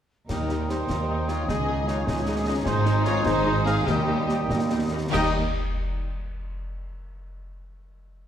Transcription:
0.29 0.82 D#2 soft
0.29 1.50 D#3 soft
0.29 2.62 D#3 soft
0.29 1.45 G3 soft
0.29 0.38 G3 soft
0.29 1.45 A#3 soft
0.29 0.67 D#4 soft
0.29 0.38 D#4 soft
0.29 2.63 D#4 soft
0.29 0.71 A#4 soft
0.29 0.67 A#4 soft
0.29 1.51 G5 soft
0.29 2.62 D#6 soft
0.29 concert bass drum medium
0.29 snare medium
0.29 crash soft
0.40 1.50 G3 soft
0.49 0.58 G3 soft
0.49 1.77 D#4 soft
0.49 0.58 D#4 soft
0.49 snare soft
0.60 0.77 D#5 soft
0.69 0.78 G3 soft
0.69 1.27 D#4 soft
0.69 0.78 D#4 soft
0.69 1.28 G4 soft
0.69 1.28 C5 soft
0.69 1.30 C5 medium
0.69 snare soft
0.79 1.18 D#5 soft
0.89 1.42 D#2 soft
0.89 0.98 G3 soft
0.89 0.98 D#4 soft
0.89 1.08 D#6 soft
0.89 concert bass drum medium
0.89 snare medium
0.99 1.50 G5 soft
1.09 1.17 G3 soft
1.09 1.18 D#4 soft
1.09 2.16 D#6 soft
1.19 1.37 D#5 soft
1.28 1.37 G3 soft
1.28 1.37 D#4 soft
1.28 1.49 F4 soft
1.28 1.50 G4 soft
1.28 1.50 C#5 medium
1.28 1.48 C#5 soft
1.28 snare soft
1.38 1.87 D#5 soft
1.48 2.00 C#2 medium
1.48 2.01 C#2 medium
1.48 2.68 C#3 soft
1.48 1.57 G#3 soft
1.48 3.89 G#3 soft
1.48 2.65 C#4 soft
1.48 1.57 D#4 soft
1.48 1.88 G#4 soft
1.48 1.88 D#5 medium
1.48 3.88 G#5 soft
1.48 concert bass drum medium
1.48 snare medium
1.59 2.68 C#4 soft
1.68 2.86 G#3 soft
1.68 1.77 G#3 soft
1.68 1.77 D#4 soft
1.78 2.56 D#4 soft
1.88 1.96 G#3 soft
1.88 1.96 D#4 soft
1.88 2.08 F4 medium
1.88 2.09 C#5 medium
1.88 2.08 C#5 medium
1.88 2.07 D#5 soft
1.88 snare soft
1.98 2.36 G#4 soft
2.07 2.59 C#2 medium
2.07 2.60 C#2 medium
2.07 2.16 G#3 soft
2.07 2.65 C#4 medium
2.07 2.16 D#4 soft
2.07 2.66 G#4 medium
2.07 2.26 D#5 soft
2.07 concert bass drum medium
2.07 snare medium
2.18 3.35 D#6 soft
2.27 2.35 G#3 medium
2.27 2.35 D#4 soft
2.27 2.46 D#5 soft
2.37 3.16 G#4 soft
2.46 2.54 G#3 medium
2.46 2.54 D#4 medium
2.46 3.05 D#5 soft
2.57 2.96 D#4 medium
2.66 3.19 G#1 medium
2.66 3.19 G#2 medium
2.66 3.89 G#2 medium
2.66 4.89 D#3 medium
2.66 2.74 G#3 medium
2.66 3.87 C4 medium
2.66 4.88 D#4 medium
2.66 2.74 D#4 medium
2.66 3.06 D#4 medium
2.66 4.89 D#4 medium
2.66 3.05 C5 medium
2.66 4.89 D#6 medium
2.66 concert bass drum medium
2.66 snare medium
2.77 3.86 D#3 soft
2.85 2.93 G#3 medium
2.85 2.94 D#4 medium
2.85 snare soft
2.97 3.76 D#4 medium
3.05 3.13 G#3 medium
3.05 3.13 D#4 medium
3.05 3.26 F4 medium
3.05 3.27 C#5 loud
3.05 3.26 C#5 medium
3.05 3.25 D#5 medium
3.05 snare soft
3.17 3.55 G#4 medium
3.25 3.80 G#1 medium
3.25 3.80 G#2 medium
3.25 3.33 G#3 medium
3.25 3.33 D#4 medium
3.25 3.66 D#4 medium
3.25 3.66 C5 loud
3.25 3.66 C5 medium
3.25 3.45 D#5 medium
3.25 concert bass drum medium
3.25 snare medium
3.36 4.49 D#6 medium
3.45 3.53 G#3 medium
3.45 3.54 D#4 medium
3.45 3.66 D#5 medium
3.57 3.89 G#4 medium
3.66 3.74 G#3 medium
3.66 3.74 D#4 medium
3.66 3.87 G#4 medium
3.66 4.18 D#5 medium
3.66 3.76 F5 medium
3.66 3.87 F5 medium
3.66 snare medium
3.77 4.07 D#4 soft
3.86 4.42 D#2 medium
3.86 4.43 D#2 medium
3.86 5.08 D#3 medium
3.86 3.95 G3 medium
3.86 4.91 G3 medium
3.86 4.93 A#3 medium
3.86 3.95 D#4 medium
3.86 4.50 G4 medium
3.86 4.49 D#5 medium
3.86 4.50 D#5 medium
3.86 4.92 G5 medium
3.86 concert bass drum medium
3.86 snare medium
3.98 5.11 G3 soft
4.08 4.16 G3 soft
4.08 4.16 D#4 soft
4.08 5.12 D#4 soft
4.19 4.38 D#5 soft
4.29 4.37 G3 medium
4.29 4.37 D#4 soft
4.29 4.91 G4 soft
4.29 snare soft
4.40 4.80 D#5 soft
4.50 5.06 D#2 medium
4.50 4.58 G3 soft
4.50 4.58 D#4 soft
4.50 4.70 D#6 soft
4.50 concert bass drum medium
4.50 snare medium
4.61 6.42 G5 soft
4.70 4.78 G3 soft
4.70 4.78 D#4 soft
4.70 6.42 D#6 soft
4.81 5.02 D#5 soft
4.92 5.00 G3 soft
4.92 5.00 D#4 soft
4.92 6.42 G4 soft
5.03 5.12 D#5 soft
5.09 5.37 D#3 medium
5.09 5.37 G3 medium
5.13 5.37 D#2 medium
5.13 5.38 D#2 medium
5.13 5.31 D#3 medium
5.13 5.37 G3 medium
5.13 5.31 G3 medium
5.13 5.32 A#3 medium
5.13 5.37 D#4 medium
5.13 5.32 D#4 medium
5.13 5.37 D#4 medium
5.13 5.37 G4 medium
5.13 5.31 D#5 loud
5.13 5.38 D#5 medium
5.13 5.31 G5 medium
5.13 5.38 D#6 medium
5.13 concert bass drum medium
5.13 snare medium
5.13 crash medium

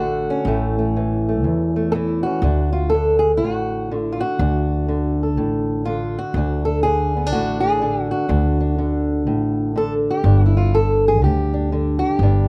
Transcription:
0.00 0.28 A1 medium
0.00 0.47 D2 medium
0.00 0.47 D3 medium
0.00 0.48 A3 soft
0.00 0.46 F#4 medium
0.30 2.25 C#4 medium
0.45 1.44 A1 medium
0.45 1.45 A2 medium
0.45 0.77 A3 medium
0.79 1.27 A3 soft
0.96 1.93 E3 medium
1.29 1.75 A3 soft
1.44 2.23 E2 medium
1.44 2.40 E2 medium
1.76 2.41 A3 soft
1.92 2.41 E3 medium
1.92 2.23 E4 soft
1.92 1.95 A4 loud
2.23 2.41 C#4 soft
2.23 2.89 F#4 medium
2.42 3.41 D2 medium
2.42 4.39 D2 medium
2.42 2.72 D4 medium
2.73 2.91 F4 medium
2.90 3.19 A4 medium
2.94 3.91 D3 medium
3.19 3.31 G#4 medium
3.37 4.20 A1 medium
3.37 3.54 F4 medium
3.44 3.92 A2 medium
3.54 4.03 F#4 medium
3.91 4.88 D3 medium
4.03 4.19 E4 medium
4.12 4.21 F4 medium
4.21 5.19 F#4 medium
4.39 5.38 D2 loud
4.39 6.36 D2 medium
4.39 5.85 D4 soft
4.88 5.87 D3 medium
5.23 6.18 A4 soft
5.37 6.17 A1 medium
5.37 5.86 A2 medium
5.85 6.84 D3 medium
5.85 6.17 F4 medium
6.18 6.65 F#4 medium
6.34 7.33 D2 medium
6.34 8.27 D2 medium
6.34 7.16 D4 soft
6.65 6.82 A4 medium
6.83 7.80 D3 medium
6.83 7.32 G#4 medium
7.17 7.26 B3 soft
7.26 7.81 D4 soft
7.32 8.12 A1 medium
7.32 7.82 A2 medium
7.32 7.60 F#4 loud
7.60 8.11 G#4 medium
7.82 8.77 D3 medium
7.82 8.29 D4 soft
8.11 9.76 F#4 medium
8.29 10.24 D2 medium
8.29 9.27 D2 medium
8.29 8.60 D4 soft
8.60 10.25 D4 soft
8.78 9.74 D3 medium
9.27 10.06 A1 medium
9.27 9.76 A2 medium
9.76 10.73 D3 medium
9.76 9.93 A4 medium
10.11 10.45 G4 medium
10.24 11.22 G1 medium
10.24 12.18 G2 medium
10.24 10.57 D4 soft
10.46 10.73 E4 medium
10.57 10.75 F4 medium
10.74 11.21 D3 medium
10.74 11.06 A4 loud
11.08 11.23 G#4 medium
11.22 12.01 D2 medium
11.22 11.71 D3 medium
11.22 11.98 G4 medium
11.54 11.72 D4 soft
11.72 12.48 D3 medium
11.72 12.22 D4 soft
11.99 12.48 G4 medium
12.19 12.48 G1 medium
12.19 12.48 G2 medium
12.19 12.48 D4 medium

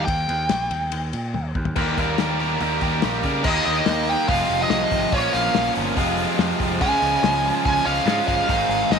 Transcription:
0.05 0.27 D#2 medium
0.05 1.50 G5 medium
0.05 kick loud
0.05 ride medium
0.28 0.49 D#2 medium
0.28 ride medium
0.49 0.70 A#1 loud
0.49 snare loud
0.49 ride medium
0.71 0.91 D#2 medium
0.71 ride medium
0.92 1.12 D#2 medium
0.92 ride medium
1.13 1.33 A#2 medium
1.13 ride medium
1.34 1.54 D#2 medium
1.34 high tom medium
1.55 1.75 D#2 medium
1.55 kick medium
1.65 floor tom medium
1.76 1.95 D#2 medium
1.76 1.96 D#3 loud
1.76 1.97 G3 medium
1.76 1.97 A#3 medium
1.76 1.97 G4 loud
1.76 1.98 A#4 loud
1.76 kick loud
1.76 crash loud
1.97 2.16 D#2 medium
1.97 2.18 D#3 medium
1.97 2.19 G3 medium
1.97 2.18 A#3 medium
1.97 2.19 G4 medium
1.97 2.20 A#4 medium
1.97 kick medium
1.97 open hi-hat medium
2.18 2.56 D#2 medium
2.18 2.39 D#3 medium
2.18 2.39 G3 medium
2.18 2.39 A#3 medium
2.18 2.40 G4 medium
2.18 2.40 A#4 medium
2.18 snare loud
2.18 open hi-hat medium
2.40 2.60 D#3 medium
2.40 2.61 G3 medium
2.40 2.60 A#3 medium
2.40 2.61 G4 medium
2.40 2.62 A#4 loud
2.40 open hi-hat medium
2.61 2.80 D#2 medium
2.61 2.81 D#3 loud
2.61 2.82 G3 loud
2.61 2.82 A#3 medium
2.61 2.82 G4 loud
2.61 2.83 A#4 loud
2.61 open hi-hat medium
2.81 3.01 D#2 medium
2.81 3.03 D#3 medium
2.81 3.03 G3 medium
2.81 3.03 A#3 medium
2.81 3.04 G4 medium
2.81 3.04 A#4 loud
2.81 kick medium
2.81 open hi-hat medium
3.02 3.22 A#1 loud
3.02 3.23 D#3 medium
3.02 3.24 G3 loud
3.02 3.24 A#3 medium
3.02 3.24 G4 loud
3.02 3.25 A#4 loud
3.02 snare loud
3.02 open hi-hat medium
3.23 3.43 C#3 medium
3.23 3.44 D#3 medium
3.23 3.44 G3 medium
3.23 3.44 A#3 medium
3.23 3.44 G4 medium
3.23 3.45 A#4 medium
3.23 kick medium
3.23 open hi-hat medium
3.44 3.59 D#2 medium
3.44 4.28 D#3 medium
3.44 4.29 A#3 loud
3.44 4.29 D#4 loud
3.44 4.29 G4 loud
3.44 3.65 D#5 medium
3.44 kick loud
3.44 crash loud
3.65 3.80 D#2 medium
3.65 4.09 D#5 loud
3.65 open hi-hat medium
3.86 4.14 D#2 loud
3.86 snare loud
3.86 open hi-hat medium
4.07 4.28 G5 loud
4.07 open hi-hat medium
4.28 4.42 F1 loud
4.28 5.12 F2 loud
4.28 5.12 C3 loud
4.28 5.14 F3 loud
4.28 5.12 G#3 loud
4.28 5.13 C4 loud
4.28 5.15 F4 loud
4.28 4.61 F5 medium
4.28 kick loud
4.28 open hi-hat medium
4.50 4.64 F1 medium
4.50 open hi-hat medium
4.62 4.69 D#5 medium
4.70 4.84 C2 loud
4.70 5.13 D#5 loud
4.70 snare loud
4.70 open hi-hat medium
4.91 5.05 G#1 medium
4.91 kick medium
4.91 open hi-hat medium
5.12 5.26 A#1 loud
5.12 5.96 A#2 medium
5.12 5.97 F3 loud
5.12 5.97 A#3 medium
5.12 5.97 C#4 loud
5.12 5.98 F4 loud
5.12 5.35 C#5 medium
5.12 kick loud
5.12 open hi-hat medium
5.33 5.48 A#1 loud
5.33 5.73 F5 medium
5.33 open hi-hat medium
5.54 5.69 A#1 medium
5.54 snare loud
5.54 open hi-hat medium
5.75 5.90 G1 loud
5.75 open hi-hat medium
5.97 6.24 F1 loud
5.97 6.79 F2 loud
5.97 6.80 C3 loud
5.97 6.80 F3 loud
5.97 6.82 G#3 medium
5.97 6.80 C4 loud
5.97 6.80 F4 loud
5.97 kick loud
5.97 open hi-hat medium
6.18 open hi-hat medium
6.39 6.52 F2 loud
6.39 snare loud
6.39 open hi-hat medium
6.60 6.83 F1 medium
6.60 kick medium
6.60 open hi-hat medium
6.81 6.95 C#2 loud
6.81 7.84 C#3 medium
6.81 7.85 F3 loud
6.81 7.85 G#3 loud
6.81 7.85 C#4 loud
6.81 7.84 F4 loud
6.81 7.64 G#5 loud
6.81 kick loud
6.81 open hi-hat medium
7.02 7.16 C#2 loud
7.02 open hi-hat medium
7.23 7.50 C#2 medium
7.23 snare loud
7.23 open hi-hat medium
7.45 open hi-hat medium
7.65 7.79 C#2 loud
7.65 7.86 G#5 loud
7.65 kick loud
7.65 open hi-hat loud
7.85 7.99 C#2 loud
7.85 8.05 C#3 medium
7.85 8.05 F3 medium
7.85 8.06 G#3 medium
7.85 8.06 C#4 medium
7.85 8.05 F4 medium
7.85 8.26 F5 loud
7.85 open hi-hat medium
8.06 8.19 G#2 loud
8.06 8.47 C#3 medium
8.06 8.47 F3 medium
8.06 8.47 G#3 medium
8.06 8.48 C#4 medium
8.06 8.48 F4 medium
8.06 snare loud
8.06 open hi-hat medium
8.28 8.41 G1 medium
8.28 8.92 F5 loud
8.28 kick medium
8.28 open hi-hat medium
8.48 8.62 G#1 loud
8.48 8.99 G#2 medium
8.48 8.99 D#3 medium
8.48 8.99 G#3 loud
8.48 8.99 C4 loud
8.48 8.99 D#4 loud
8.48 8.99 G#4 loud
8.48 kick loud
8.48 open hi-hat medium
8.69 8.83 G#1 medium
8.69 open hi-hat medium
8.90 8.99 G#1 medium
8.90 8.99 D#5 medium
8.90 snare loud
8.90 open hi-hat medium

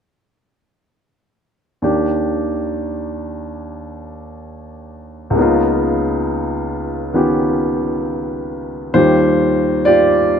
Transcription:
1.82 5.36 D#2 soft
1.82 5.36 D#3 soft
1.82 5.37 D4 soft
1.82 5.37 G4 soft
5.30 8.92 C#2 soft
5.30 8.93 C#3 soft
5.35 8.94 A#3 soft
5.35 7.13 B3 soft
5.35 8.96 D#4 soft
5.42 7.14 F4 soft
7.14 8.92 D#3 soft
7.14 8.95 B3 soft
7.14 8.95 C#4 soft
7.14 8.93 F4 soft
7.14 8.95 G4 soft
8.94 10.40 D#2 soft
8.94 10.40 D#3 soft
8.94 10.40 G3 soft
8.94 9.85 F4 soft
8.94 9.86 G4 medium
8.94 9.81 C5 medium
9.85 10.40 F4 medium
9.85 10.40 G4 medium
9.85 10.40 D5 medium

